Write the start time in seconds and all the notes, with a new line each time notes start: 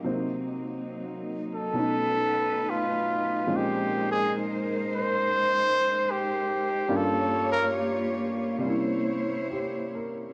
Already playing: A#3 C4
0.04 C3 F#3 A#3 D#4 C5
1.54 A4
1.73 B2 F#3 A3 C#4
1.77 A3 D#4 B4
2.70 F4
3.47 A#2 F3 G#3 C4 C#4 D#4 A#4 C5
3.56 G4
4.12 G#4
4.95 C5
6.11 G4
6.88 G2 G3 A#3 C#4 F4 G4 C#5
6.97 A4
7.52 A#4
8.58 C3 G3
8.62 A#3 C#4 E4 C5 C#5
8.69 E4
9.51 G4
9.95 A#4